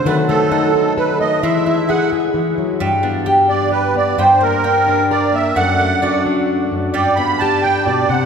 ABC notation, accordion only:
X:1
M:3/4
L:1/8
Q:1/4=131
K:G
V:1 name="Accordion"
B A3 B ^d | e2 f z3 | z3 d B d | c _B3 d e |
f2 d z3 | d b a g d f |]